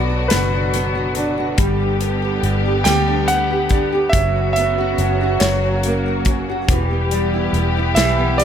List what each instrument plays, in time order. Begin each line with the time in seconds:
Already playing: fingered electric bass B1, nylon-string guitar B2 B3 D4, string section D3 F#3 B3 F#4, grand piano D5
0.10 nylon-string guitar F#4
0.28 fingered electric bass F#1, nylon-string guitar B2, grand piano B4, snare, closed hi-hat
0.53 nylon-string guitar D4
0.73 nylon-string guitar B3, closed hi-hat
0.95 nylon-string guitar F#4
1.15 nylon-string guitar D4, closed hi-hat
1.38 nylon-string guitar F#4
1.57 fingered electric bass G1, nylon-string guitar G3, string section G3 B3 G4, kick, closed hi-hat
1.80 nylon-string guitar D4
2.01 nylon-string guitar B3, closed hi-hat
2.22 nylon-string guitar G4
2.43 fingered electric bass G1, nylon-string guitar D4, closed hi-hat
2.66 nylon-string guitar G4
2.84 fingered electric bass D2, nylon-string guitar G3, grand piano G5, snare, closed hi-hat
3.08 nylon-string guitar D4
3.28 nylon-string guitar B3, grand piano F#5, closed hi-hat
3.51 nylon-string guitar G4
3.69 nylon-string guitar D4, kick, closed hi-hat
3.92 nylon-string guitar G4
4.09 fingered electric bass F#1, string section C#3 F#3 B3 F#4, grand piano E5, kick, closed hi-hat
4.15 nylon-string guitar F#3
4.36 nylon-string guitar C#4
4.53 grand piano E5, closed hi-hat
4.57 nylon-string guitar B3
4.78 nylon-string guitar F#4
4.98 fingered electric bass F#1, nylon-string guitar C#4, closed hi-hat
5.21 nylon-string guitar F#4
5.40 fingered electric bass F#1, nylon-string guitar F#3, string section A#3, grand piano C#5, snare, closed hi-hat
5.64 nylon-string guitar C#4
5.83 nylon-string guitar A#3, closed hi-hat
6.06 nylon-string guitar F#4
6.25 nylon-string guitar C#4, kick, closed hi-hat
6.50 nylon-string guitar F#4
6.68 fingered electric bass E1, string section E3 G3 B3 G4, nylon-string guitar E3, kick, closed hi-hat
6.91 nylon-string guitar B3
7.11 nylon-string guitar G3, closed hi-hat
7.34 nylon-string guitar E4
7.53 fingered electric bass E1, nylon-string guitar B3, closed hi-hat
7.77 nylon-string guitar E4
7.95 fingered electric bass B1, nylon-string guitar E3, grand piano E5, snare, closed hi-hat
8.18 nylon-string guitar B3
8.38 nylon-string guitar G3, grand piano D5, closed hi-hat